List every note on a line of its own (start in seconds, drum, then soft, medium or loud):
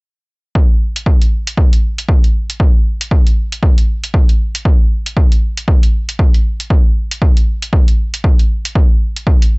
0.55 kick loud
0.96 closed hi-hat medium
1.06 kick loud
1.22 closed hi-hat soft
1.47 closed hi-hat medium
1.58 kick loud
1.73 closed hi-hat medium
1.99 closed hi-hat medium
2.09 kick loud
2.24 closed hi-hat soft
2.50 closed hi-hat medium
2.60 kick loud
3.01 closed hi-hat medium
3.11 kick loud
3.27 closed hi-hat soft
3.52 closed hi-hat medium
3.63 kick loud
3.78 closed hi-hat soft
4.04 closed hi-hat medium
4.14 kick loud
4.29 closed hi-hat soft
4.55 closed hi-hat medium
4.65 kick loud
5.06 closed hi-hat medium
5.16 kick loud
5.32 closed hi-hat soft
5.57 closed hi-hat medium
5.68 kick loud
5.83 closed hi-hat soft
6.09 closed hi-hat medium
6.19 kick loud
6.34 closed hi-hat soft
6.60 closed hi-hat medium
6.70 kick loud
7.11 closed hi-hat medium
7.22 kick loud
7.37 closed hi-hat soft
7.63 closed hi-hat medium
7.73 kick loud
7.88 closed hi-hat soft
8.14 closed hi-hat medium
8.24 kick loud
8.39 closed hi-hat soft
8.65 closed hi-hat medium
8.75 kick loud
9.16 closed hi-hat medium
9.27 kick loud
9.42 closed hi-hat soft